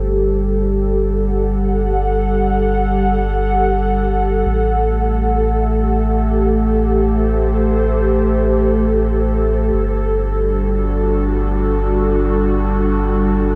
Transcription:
Already playing: sub bass G1, analog synth pad G3 G4 A4
1.02 analog synth pad F#5
4.46 sub bass A1, analog synth pad A3
5.23 analog synth pad G4
6.84 analog synth pad C5
9.74 sub bass G1, analog synth pad G3
9.92 analog synth pad D4
10.23 analog synth pad F#4

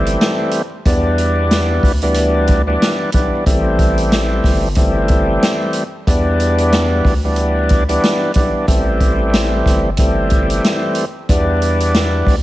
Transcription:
Already playing: analog synth bass G1, tonewheel organ E3 G3 A3 C4
0.06 closed hi-hat
0.21 snare, closed hi-hat
0.51 closed hi-hat
0.86 analog synth bass E2, tonewheel organ E3 G3 B3 D4, kick, closed hi-hat
1.18 closed hi-hat
1.51 snare, closed hi-hat
1.83 analog synth bass D2, kick, open hi-hat
2.02 tonewheel organ E3 G3 B3 D4, closed hi-hat
2.14 closed hi-hat
2.47 kick, closed hi-hat
2.67 tonewheel organ E3 G3 B3 D4
2.82 snare, closed hi-hat
3.12 analog synth bass B1, tonewheel organ E3 G3 B3 D4, kick, closed hi-hat
3.46 analog synth bass A1, tonewheel organ E3 G3 A3 C4, kick, closed hi-hat
3.79 kick, closed hi-hat
3.98 closed hi-hat
4.12 snare, closed hi-hat
4.44 analog synth bass G1, kick, snare, open hi-hat
4.75 tonewheel organ E3 G3 A3 C4, kick, closed hi-hat
5.08 kick, closed hi-hat
5.43 snare, closed hi-hat
5.73 closed hi-hat
6.07 analog synth bass E2, tonewheel organ E3 G3 B3 D4, kick, closed hi-hat
6.40 closed hi-hat
6.58 closed hi-hat
6.72 snare, closed hi-hat
7.05 analog synth bass D2, kick, open hi-hat
7.24 tonewheel organ E3 G3 B3 D4
7.36 closed hi-hat
7.69 kick, closed hi-hat
7.89 tonewheel organ E3 G3 B3 D4, closed hi-hat
8.03 snare, closed hi-hat
8.34 analog synth bass B1, tonewheel organ E3 G3 B3 D4, kick, closed hi-hat
8.67 analog synth bass A1, tonewheel organ E3 G3 A3 C4, kick, closed hi-hat
9.01 kick, closed hi-hat
9.33 snare, closed hi-hat
9.66 analog synth bass G1, kick, snare, closed hi-hat
9.97 tonewheel organ E3 G3 A3 C4, kick, closed hi-hat
10.30 kick, closed hi-hat
10.50 closed hi-hat
10.64 snare, closed hi-hat
10.95 closed hi-hat
11.29 analog synth bass E2, tonewheel organ E3 G3 B3 D4, kick, closed hi-hat
11.62 closed hi-hat
11.80 closed hi-hat
11.94 snare, closed hi-hat
12.27 analog synth bass D2, kick, open hi-hat

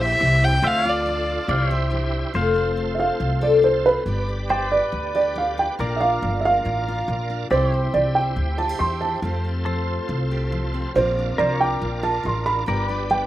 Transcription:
Already playing: upright bass A#1, steel-string acoustic guitar G2 E4 G4, tonewheel organ E4 G4 C5, pedal steel guitar C5 E5
0.01 fiddle E5
0.20 upright bass C2, steel-string acoustic guitar E3
0.42 steel-string acoustic guitar C4, fiddle G5
0.62 upright bass D2, steel-string acoustic guitar D3, tonewheel organ F4 A4 D5, pedal steel guitar C5 E5
0.67 fiddle F5
0.84 steel-string acoustic guitar F4, pedal steel guitar F5
0.89 pedal steel guitar D5, fiddle D5
1.06 steel-string acoustic guitar F3 D4
1.47 upright bass C2, steel-string acoustic guitar C3, tonewheel organ E4 G4 C5, pedal steel guitar D5 F5
1.71 steel-string acoustic guitar G4, pedal steel guitar C5 E5
1.91 steel-string acoustic guitar E3 D4
2.32 upright bass F1, steel-string acoustic guitar F2 A3 C4 A4, tonewheel organ F4 A4 C5, pedal steel guitar C5 F5
2.55 steel-string acoustic guitar C4
2.77 steel-string acoustic guitar F3
2.95 upright piano E5
3.00 upright piano F5
3.20 upright bass C2, steel-string acoustic guitar C3
3.41 steel-string acoustic guitar A4, upright piano D5
3.63 steel-string acoustic guitar F3, upright piano C5
3.86 steel-string acoustic guitar C4, upright piano B4
4.06 upright bass G1, steel-string acoustic guitar G2 B3 D4 G4, tonewheel organ G4 B4 D5
4.29 steel-string acoustic guitar D4
4.49 steel-string acoustic guitar G3, pedal steel guitar C5 D5, upright piano G5
4.70 pedal steel guitar B4, upright piano D5
4.92 upright bass D2, steel-string acoustic guitar D3
5.15 steel-string acoustic guitar G4, upright piano D5
5.35 steel-string acoustic guitar G3, upright piano F5
5.58 steel-string acoustic guitar D4, upright piano G5
5.78 upright bass A#1, steel-string acoustic guitar A#2 A#3 D4 F4, tonewheel organ F4 A#4 D5, pedal steel guitar A#4 D5
5.96 upright piano E5
6.01 steel-string acoustic guitar D4, upright piano F5
6.22 upright bass G1, steel-string acoustic guitar F3
6.41 upright piano E5
6.45 upright piano F5
6.65 upright bass A1, steel-string acoustic guitar F2
6.88 steel-string acoustic guitar F4
7.08 upright bass A#1, steel-string acoustic guitar F3
7.30 steel-string acoustic guitar D4
7.50 upright bass C2, steel-string acoustic guitar C3 C4 E4 G4, tonewheel organ E4 G4 C5, pedal steel guitar G4 D5, upright piano C5
7.73 steel-string acoustic guitar E4, pedal steel guitar C5
7.94 upright bass C2, steel-string acoustic guitar E3, upright piano D5
8.15 upright piano G5
8.36 upright bass D2, steel-string acoustic guitar G2
8.58 steel-string acoustic guitar F4, upright piano A5
8.69 steel-string acoustic guitar G4
8.79 upright bass E2, steel-string acoustic guitar E3, upright piano C6
9.01 steel-string acoustic guitar E4, upright piano A5
9.22 upright bass F2, steel-string acoustic guitar F2 A3 C4 G4, tonewheel organ F4 A4 C5
9.45 steel-string acoustic guitar C4
9.65 steel-string acoustic guitar F3, pedal steel guitar A4 C5
10.09 upright bass C2, steel-string acoustic guitar C3
10.31 steel-string acoustic guitar G4
10.52 steel-string acoustic guitar F3
10.74 steel-string acoustic guitar C4
10.94 upright bass A#1, steel-string acoustic guitar A#2 C4 D4 F4, tonewheel organ F4 A#4 D5, upright piano C5
11.19 steel-string acoustic guitar D4
11.38 upright bass C2, steel-string acoustic guitar F3, pedal steel guitar A#4 C5, upright piano D5
11.61 upright piano G5
11.65 pedal steel guitar D5
11.82 upright bass A#1, steel-string acoustic guitar F2
12.03 steel-string acoustic guitar F4, upright piano A5
12.23 upright bass A1, steel-string acoustic guitar F3, upright piano C6
12.46 steel-string acoustic guitar D4, upright piano B5
12.66 upright bass G1, steel-string acoustic guitar G2 B3 D4 G4, tonewheel organ G4 B4 D5, pedal steel guitar A#4 D5
12.88 steel-string acoustic guitar D4, pedal steel guitar B4
13.10 steel-string acoustic guitar G3, upright piano G5

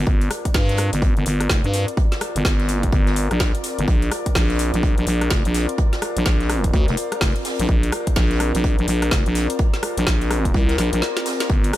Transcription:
Already playing: analog synth pad C4 F4 A#4 D5
0.07 fm bass G1, kick, closed hi-hat
0.21 closed hi-hat
0.31 cross-stick, closed hi-hat, open hi-hat
0.45 kick, closed hi-hat
0.54 fm bass G2, kick, snare, open hi-hat
0.69 snare, closed hi-hat
0.77 cross-stick, closed hi-hat, open hi-hat
0.93 fm bass G1, closed hi-hat
1.02 kick, closed hi-hat
1.17 fm bass G1, closed hi-hat
1.26 fm bass G1, closed hi-hat, open hi-hat
1.40 cross-stick, closed hi-hat
1.49 fm bass F1, kick, snare, closed hi-hat
1.64 fm bass G2, closed hi-hat
1.73 snare, closed hi-hat, open hi-hat
1.88 closed hi-hat
1.97 kick, closed hi-hat
2.12 snare, closed hi-hat
2.21 cross-stick, closed hi-hat, open hi-hat
2.36 fm bass G1, closed hi-hat
2.45 fm bass G1, kick, snare, closed hi-hat
2.59 snare, closed hi-hat
2.69 closed hi-hat, open hi-hat
2.83 kick, closed hi-hat
2.92 fm bass G1, kick, closed hi-hat
3.07 snare, closed hi-hat
3.16 closed hi-hat, open hi-hat
3.31 fm bass A#1, cross-stick, closed hi-hat
3.40 kick, snare, closed hi-hat
3.55 closed hi-hat
3.63 snare, closed hi-hat, open hi-hat
3.79 fm bass G1, closed hi-hat
3.88 fm bass A#1, kick, closed hi-hat
4.02 closed hi-hat
4.11 cross-stick, closed hi-hat, open hi-hat
4.26 kick, closed hi-hat
4.35 fm bass A#1, kick, snare, open hi-hat
4.50 snare, closed hi-hat
4.59 closed hi-hat, open hi-hat
4.74 fm bass A#1, closed hi-hat
4.83 kick, closed hi-hat
4.98 fm bass A#1, closed hi-hat
5.07 fm bass A#1, closed hi-hat, open hi-hat
5.21 cross-stick, closed hi-hat
5.30 fm bass F1, kick, snare, closed hi-hat
5.45 fm bass A#1, closed hi-hat
5.54 snare, closed hi-hat, open hi-hat
5.69 closed hi-hat
5.78 kick, closed hi-hat
5.92 snare, closed hi-hat
6.02 cross-stick, closed hi-hat, open hi-hat
6.17 fm bass A#1, closed hi-hat
6.26 fm bass A#1, kick, snare, closed hi-hat
6.40 snare, closed hi-hat
6.50 cross-stick, closed hi-hat, open hi-hat
6.64 kick, closed hi-hat
6.73 fm bass D2, kick, closed hi-hat
6.87 fm bass F1, snare, closed hi-hat
6.97 closed hi-hat, open hi-hat
7.12 cross-stick, closed hi-hat
7.21 fm bass F1, kick, snare, open hi-hat
7.36 closed hi-hat
7.45 snare, open hi-hat
7.59 fm bass A#1, closed hi-hat
7.68 fm bass A#1, kick, closed hi-hat
7.83 closed hi-hat
7.92 cross-stick, closed hi-hat, open hi-hat
8.07 kick, closed hi-hat
8.16 fm bass A#1, kick, snare, open hi-hat
8.31 snare, closed hi-hat
8.40 cross-stick, closed hi-hat, open hi-hat
8.55 fm bass A#1, closed hi-hat
8.64 kick, closed hi-hat
8.78 fm bass A#1, closed hi-hat
8.88 fm bass A#1, closed hi-hat, open hi-hat
9.02 cross-stick, closed hi-hat
9.11 fm bass F1, kick, snare, closed hi-hat
9.26 fm bass A#1, closed hi-hat
9.35 snare, closed hi-hat, open hi-hat
9.50 closed hi-hat
9.59 kick, closed hi-hat
9.73 snare, closed hi-hat
9.83 cross-stick, closed hi-hat, open hi-hat
9.97 fm bass A#1, closed hi-hat
10.07 fm bass A#1, kick, snare, closed hi-hat
10.21 snare, closed hi-hat
10.31 cross-stick, closed hi-hat, open hi-hat
10.45 kick, closed hi-hat
10.54 fm bass C2, kick, closed hi-hat
10.69 snare, closed hi-hat
10.78 fm bass A#1, snare, closed hi-hat, open hi-hat
10.93 fm bass A#1, closed hi-hat
11.02 snare, closed hi-hat
11.17 snare, closed hi-hat
11.26 snare, open hi-hat
11.40 snare, closed hi-hat
11.50 fm bass G1, kick, closed hi-hat
11.63 closed hi-hat
11.73 cross-stick, closed hi-hat, open hi-hat

